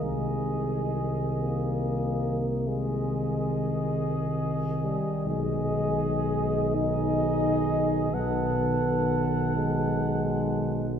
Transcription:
X:1
M:12/8
L:1/8
Q:3/8=44
K:Ablyd
V:1 name="Cornet"
e4- e z e6 | e3 e3 ^f4- f z |]
V:2 name="Flugelhorn"
A4- A z A6 | A3 A3 =A4- A z |]
V:3 name="Euphonium" clef=bass
A,2 z B,3 A,4 z G, | A,3 E3 =B,3 A,3 |]
V:4 name="Trombone" clef=bass
E,4- E, z E,6 | E,3 E,3 ^D,4- D, z |]
V:5 name="Tuba" clef=bass
C,,8- C,,3 z | _C,,6 =B,,,6 |]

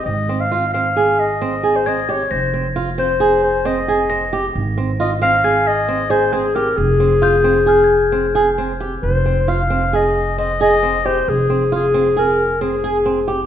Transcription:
X:1
M:5/4
L:1/16
Q:1/4=134
K:Fm
V:1 name="Glockenspiel"
z16 a'4 | b'12 z4 b'4- | b'2 z6 a'12 | z4 g'4 f' a'8- a'3- |
a' z16 z3 | z16 z4 |]
V:2 name="Clarinet"
e3 f3 f4 e4- e c e2 d2 | c2 z4 c4 c2 e6 z2 | z4 e2 f4 e4 c2 A2 B2 | A16 z4 |
c4 f4 e4 e2 e4 c2 | A4 A4 B4 A6 z2 |]
V:3 name="Nylon-string guitar"
z2 C2 F2 C2 A4 C2 A2 C2 G2 | z2 C2 F2 C2 A4 C2 A2 C2 G2 | z2 C2 F2 C2 A4 C2 A2 C2 G2 | z2 C2 F2 C2 A4 C2 A2 C2 G2 |
z2 C2 F2 C2 A4 C2 A2 C2 G2 | z2 C2 F2 C2 A4 C2 A2 C2 G2 |]
V:4 name="Upright bass" clef=bass
A,,,16- A,,,4 | F,,,16- F,,,4 | A,,,16- A,,,4 | F,,,16- F,,,4 |
F,,,16- F,,,4 | F,,,16- F,,,4 |]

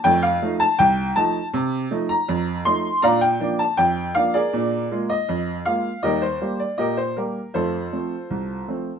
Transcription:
X:1
M:2/4
L:1/16
Q:1/4=80
K:Bb
V:1 name="Upright piano"
g f2 a g2 a2 | z3 b3 c'2 | [dfb] g2 a g2 f [_ABd]- | [_ABd]3 e3 f2 |
[GBe] c2 d [GBe] c B2 | [FAc]8 |]
V:2 name="Upright piano"
[F,,A,]2 [F,A,E]2 C,,2 [F,A,E]2 | C,2 [F,A,E]2 F,,2 [F,A,E]2 | [B,,D]2 [F,B,D]2 F,,2 [F,B,D]2 | [B,,D]2 [_A,B,F]2 F,,2 [A,B,F]2 |
[E,,G,]2 [G,B,G]2 B,,2 [G,B,G]2 | [F,,A,]2 [F,A,C]2 C,,2 [F,A,C]2 |]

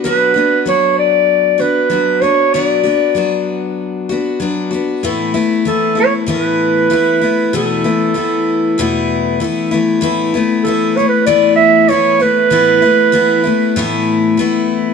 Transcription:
X:1
M:4/4
L:1/16
Q:1/4=96
K:Amix
V:1 name="Clarinet"
B4 c2 d4 B4 c2 | d6 z8 z2 | z4 A2 c2 B8 | A12 z4 |
z4 A2 c B d2 e2 c2 B2- | B8- B2 z6 |]
V:2 name="Steel-string acoustic guitar"
[B,,F,B,DF]2 [B,DF]2 [F,B,DF]6 [B,DF]2 [F,B,DF]2 [B,DF]2 | [B,,F,B,DF]2 [B,DF]2 [F,B,DF]6 [B,DF]2 [F,B,DF]2 [B,DF]2 | [A,,E,A,B,E]2 [A,B,E]2 [E,A,B,E]2 [A,B,E]2 [A,,E,A,B,E]4 [E,A,B,E]2 [A,B,E]2 | [E,,B,,E,A,B,E]2 [E,A,B,E]2 [E,A,B,E]4 [E,,B,,E,A,B,E]4 [E,A,B,E]2 [E,A,B,E]2 |
[A,,E,A,B,E]2 [A,B,E]2 [E,A,B,E]2 [A,B,E]2 [A,,E,A,B,E]4 [E,A,B,E]2 [A,B,E]2 | [A,,E,A,B,E]2 [A,B,E]2 [E,A,B,E]2 [A,B,E]2 [A,,E,A,B,E]4 [E,A,B,E]4 |]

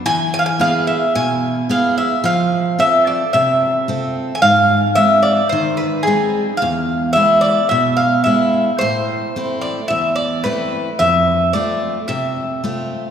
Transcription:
X:1
M:4/4
L:1/16
Q:1/4=110
K:none
V:1 name="Bouzouki"
^g2 g/2 f/2 g f2 e2 g4 f2 e2 | f4 e2 d2 e6 z3/2 ^g/2 | f4 e2 d2 ^B2 =B2 ^G3 z | f4 e2 d2 e2 f2 e3 z |
c6 d2 e2 d2 B4 | e4 d4 e6 z2 |]
V:2 name="Steel-string acoustic guitar"
E,4 [B,E^G]4 B,,4 [B,EG]4 | F,4 [CFA]4 C,4 [CFA]4 | ^G,,4 [^G,^B,^D]4 ^D,4 [G,B,D]4 | E,,4 [^G,B,E]4 B,,4 [G,B,E]4 |
A,,4 [A,CE]4 E,,4 [A,CE]4 | F,,4 [A,CF]4 C,4 [A,CF]4 |]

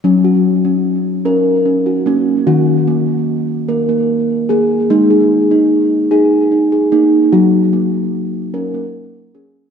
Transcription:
X:1
M:6/8
L:1/16
Q:3/8=49
K:F#
V:1 name="Steel tongue drum"
C F2 C2 z A2 C F A,2 | F2 A,2 z2 A A,2 z G2 | D G2 D2 z G2 D G A,2 | F2 A,2 z2 A A,2 z G2 |]
V:2 name="Steel tongue drum"
F,6 C4 C z | D,6 A,4 A, z | G,6 D4 D z | F,6 C4 C z |]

